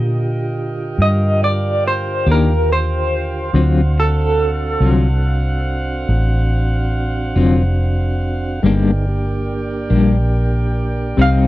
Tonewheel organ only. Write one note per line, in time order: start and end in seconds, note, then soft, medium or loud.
0.00 3.50 D3 medium
0.00 3.50 F4 medium
0.00 3.50 G4 medium
3.54 8.60 C4 medium
3.54 8.60 D4 medium
3.54 8.60 F#4 medium
8.62 9.06 B3 medium
8.62 9.06 D#4 medium
8.62 9.06 G#4 medium
9.08 11.17 A#3 medium
9.08 11.18 D4 medium
9.08 11.18 G4 medium
11.18 11.47 C4 medium
11.18 11.47 D#4 medium
11.18 11.47 G4 medium